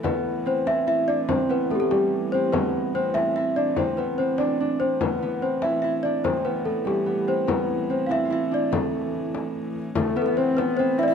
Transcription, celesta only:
\new Staff \with { instrumentName = "Celesta" } { \time 6/8 \key a \minor \tempo 4. = 97 b'4 c''8 e''8 e''8 d''8 | c''8 b'8 a'32 g'32 a'16 g'4 c''8 | b'4 c''8 e''8 e''8 d''8 | c''8 b'8 c''8 d''4 c''8 |
b'4 c''8 e''8 e''8 d''8 | c''8 b'8 a'8 g'4 c''8 | b'4 c''16. f''32 e''8 e''8 d''8 | a'2~ a'8 r8 |
a'8 b'32 a'32 b'16 c''8 b'8 c''8 e''32 d''32 e''16 | }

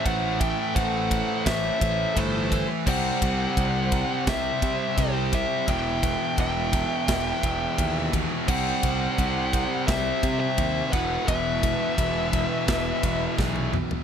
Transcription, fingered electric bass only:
\new Staff \with { instrumentName = "Fingered electric bass" } { \clef bass \time 4/4 \key e \minor \tempo 4 = 86 a,,4 a,,4 a,,8 a,,8 g,,4 | c,8 c,8 c,4 c,8 c8 c,4 | e,,4 e,,4 e,,8 e,,8 dis,4 | c,8 c,8 c,4 c,8 c8 dis,8 e,,8 |
e,,4 e,,4 e,,8 e,,8 b,,4 | }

